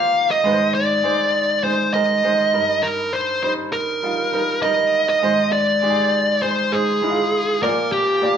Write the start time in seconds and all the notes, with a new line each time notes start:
Already playing: A#2 F3 A#3 F4 G4 A4 A#4 C5 D5 F5
0.31 D#5
0.44 G#2 D#3 G#3 D#4 B4
0.51 C5
0.74 D5
1.04 G#3 D#4 C5
1.64 G#3 D#4 C5
1.94 G#3 D#4 A#4 D#5
2.23 G#3 D#4 C5
2.53 G2 G3 D#4 A#4
2.83 A#4
3.13 C5
3.43 G3 D#4 C5
3.73 A#4
4.03 G3 D#4 F4
4.33 G3 D#4 A#4
4.62 G3 D#4 A#4 D#5
5.09 D#5
5.22 G#2 D#3 G#3 D#4 C5
5.52 D5
5.82 G#3 D#4 G4
5.90 G#4
6.42 G#3 D#4 C5
6.72 G#3 D#4 G#4 C5
7.02 G#3 D#4 E4
7.10 F4
7.62 A#2 F3 A#3 F4 A#4 D5
7.92 G4
8.22 A#3 F4 D5